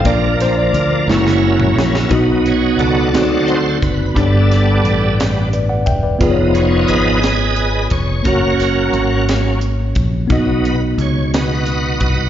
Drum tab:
HH |x-x-x-------|x-x-x-x-x-x-|x-x-x-x-x-x-|x-x-x-x-x-x-|
SD |--o---oo--oo|------o-----|--o---o-----|------o-----|
T2 |---------o--|------------|------------|------------|
BD |o-----------|o---------o-|o---------o-|o---------o-|

HH |x-x-x-x-x-x-|x-x-x-x-x-x-|
SD |--o---o-----|------o-----|
T2 |------------|------------|
BD |o---------o-|o---------o-|